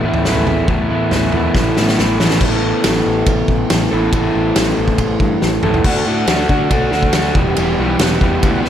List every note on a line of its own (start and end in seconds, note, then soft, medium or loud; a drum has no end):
0.04 0.24 A1 medium
0.04 0.25 A2 medium
0.04 0.26 E3 medium
0.04 0.26 A3 medium
0.04 0.27 B3 loud
0.04 0.28 E4 loud
0.14 floor tom medium
0.25 0.46 A1 loud
0.25 0.47 A2 loud
0.25 0.47 E3 loud
0.25 0.47 A3 loud
0.25 0.48 B3 loud
0.25 0.48 E4 loud
0.25 snare medium
0.35 floor tom medium
0.47 0.67 A1 medium
0.47 0.66 A2 medium
0.47 0.67 E3 medium
0.47 0.67 A3 medium
0.47 0.68 B3 medium
0.47 0.68 E4 medium
0.47 floor tom medium
0.47 mid tom medium
0.68 0.88 A1 loud
0.68 0.88 A2 loud
0.68 0.89 E3 loud
0.68 0.89 A3 loud
0.68 0.89 B3 loud
0.68 0.89 E4 loud
0.68 kick loud
0.68 floor tom medium
0.89 1.10 A1 medium
0.89 1.11 A2 medium
0.89 1.11 E3 medium
0.89 1.12 A3 medium
0.89 1.12 B3 medium
0.89 1.12 E4 loud
1.11 1.32 A1 medium
1.11 1.32 A2 medium
1.11 1.33 E3 loud
1.11 1.33 A3 loud
1.11 1.33 B3 loud
1.11 1.34 E4 loud
1.11 snare medium
1.11 floor tom medium
1.32 1.54 E2 medium
1.32 1.55 A2 medium
1.32 1.55 E3 medium
1.32 1.56 A3 medium
1.32 1.56 B3 medium
1.32 1.56 E4 medium
1.32 floor tom medium
1.32 mid tom medium
1.55 1.75 A1 loud
1.55 1.76 A2 medium
1.55 1.77 E3 loud
1.55 1.77 A3 loud
1.55 1.78 B3 medium
1.55 1.78 E4 loud
1.55 kick loud
1.55 snare medium
1.77 1.97 A1 medium
1.77 1.99 A2 medium
1.77 1.99 E3 medium
1.77 1.99 A3 medium
1.77 2.00 B3 medium
1.77 2.00 E4 medium
1.77 snare medium
1.88 snare medium
1.98 2.18 A1 medium
1.98 2.20 A2 medium
1.98 2.20 E3 loud
1.98 2.20 A3 loud
1.98 2.21 B3 loud
1.98 2.21 E4 loud
1.98 snare medium
2.20 2.40 A1 medium
2.20 2.40 A2 medium
2.20 2.40 E3 medium
2.20 2.40 A3 medium
2.20 2.41 B3 loud
2.20 2.41 E4 medium
2.20 snare loud
2.30 snare medium
2.41 2.72 A1 medium
2.41 3.91 A2 loud
2.41 3.91 E3 loud
2.41 3.91 B3 loud
2.41 3.90 E4 loud
2.41 3.91 A4 loud
2.41 kick loud
2.41 crash loud
2.84 3.00 A1 medium
2.84 snare loud
2.84 ride bell medium
3.07 3.21 A1 medium
3.26 3.42 A1 medium
3.26 kick loud
3.26 ride bell medium
3.48 3.64 A1 medium
3.48 kick medium
3.70 3.86 A1 medium
3.70 snare loud
3.70 ride bell medium
3.91 4.08 A1 medium
3.91 4.11 A2 medium
3.91 4.12 E3 medium
3.91 4.12 B3 medium
3.91 4.12 E4 medium
3.91 4.14 A4 medium
4.12 4.28 A1 loud
4.12 5.62 A2 loud
4.12 5.62 E3 loud
4.12 5.62 B3 loud
4.12 5.63 E4 loud
4.12 5.62 A4 loud
4.12 kick loud
4.12 ride bell medium
4.35 4.50 A1 medium
4.56 4.72 A1 medium
4.56 snare loud
4.56 ride bell medium
4.78 4.93 A1 medium
4.88 kick medium
4.98 5.14 A1 medium
4.98 kick loud
4.98 ride bell medium
5.20 5.36 G2 medium
5.20 kick medium
5.42 5.58 A1 medium
5.42 snare medium
5.63 5.79 A1 medium
5.63 5.85 A2 medium
5.63 5.84 E3 medium
5.63 5.84 B3 medium
5.63 5.84 E4 medium
5.63 5.84 A4 medium
5.63 mid tom medium
5.74 floor tom medium
5.84 6.02 D2 loud
5.84 6.05 D3 medium
5.84 6.05 A3 loud
5.84 6.07 D4 loud
5.84 6.06 F#4 loud
5.84 kick loud
5.84 crash loud
6.06 6.24 A2 medium
6.06 6.26 D3 medium
6.06 6.27 A3 loud
6.06 6.28 D4 medium
6.06 6.28 F#4 medium
6.27 6.45 D2 medium
6.27 6.49 D3 medium
6.27 6.49 A3 medium
6.27 6.50 D4 medium
6.27 6.50 F#4 loud
6.27 snare loud
6.27 ride bell medium
6.49 6.67 D3 medium
6.49 6.68 D3 medium
6.49 6.69 A3 medium
6.49 6.69 D4 medium
6.49 6.70 F#4 loud
6.49 kick medium
6.70 6.88 B1 loud
6.70 6.90 D3 loud
6.70 6.91 A3 loud
6.70 6.91 D4 loud
6.70 6.92 F#4 loud
6.70 kick loud
6.70 ride bell medium
6.91 7.09 D2 medium
6.91 7.12 D3 medium
6.91 7.12 A3 medium
6.91 7.12 D4 loud
6.91 7.13 F#4 loud
6.91 snare soft
7.03 kick medium
7.13 7.31 D2 medium
7.13 7.34 D3 medium
7.13 7.34 A3 medium
7.13 7.34 D4 medium
7.13 7.34 F#4 medium
7.13 snare loud
7.13 ride bell medium
7.35 7.53 E1 medium
7.35 7.55 E2 loud
7.35 7.56 B2 medium
7.35 7.57 E3 loud
7.35 7.57 G3 loud
7.35 7.57 B3 loud
7.35 7.58 G4 loud
7.35 kick loud
7.56 7.75 E1 loud
7.56 7.77 E2 loud
7.56 7.78 B2 medium
7.56 7.79 E3 loud
7.56 7.79 G3 loud
7.56 7.78 B3 loud
7.56 7.80 G4 loud
7.56 ride bell medium
7.78 7.96 B1 medium
7.78 7.98 E2 medium
7.78 7.98 B2 medium
7.78 8.00 E3 medium
7.78 8.00 G3 medium
7.78 8.00 B3 medium
7.78 8.01 G4 loud
7.99 8.17 E1 loud
7.99 8.20 E2 medium
7.99 8.20 B2 medium
7.99 8.22 E3 medium
7.99 8.22 G3 loud
7.99 8.22 B3 medium
7.99 8.23 G4 medium
7.99 snare loud
7.99 ride bell medium
8.21 8.42 E2 medium
8.21 8.38 E2 medium
8.21 8.42 B2 medium
8.21 8.42 E3 loud
8.21 8.43 G3 medium
8.21 8.42 B3 medium
8.21 8.44 G4 medium
8.21 kick medium
8.43 8.60 D2 loud
8.43 8.63 E2 medium
8.43 8.64 B2 loud
8.43 8.63 E3 loud
8.43 8.65 G3 loud
8.43 8.64 B3 loud
8.43 8.66 G4 loud
8.43 kick loud
8.43 ride bell medium
8.64 8.69 E1 medium
8.64 8.69 E2 medium
8.64 8.69 B2 medium
8.64 8.69 E3 loud
8.64 8.69 G3 medium
8.64 8.69 B3 medium
8.64 8.69 G4 medium
8.64 snare soft